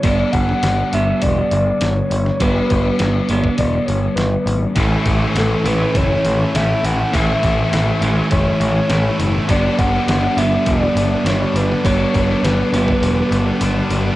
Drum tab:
HH |o-o-o-o-o-o-o-o-|o-o-o-o-o-o-o-o-|o-o-o-o-o-o-o-o-|o-o-o-o-o-o-o-o-|
SD |---oo-------o--o|----o-------o---|---oo-------o---|----o-------o--o|
BD |o-o-----o-------|o-o----oo-------|o-o-----o-------|o-o-----o-------|

HH |o-o-o-o-o-o-o-o-|o-o-o-o-o-o-o-o-|
SD |----o-------o--o|---oo-----------|
BD |o-o-----o-------|o-o----o--------|